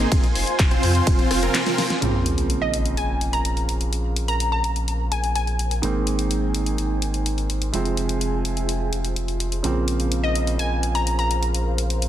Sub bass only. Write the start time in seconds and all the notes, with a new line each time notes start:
0.12 F1
0.36 F1
0.59 F1
0.83 F2
1.07 F1
1.31 F1
2.02 A#1
5.83 G#1
7.74 F1
9.64 A#1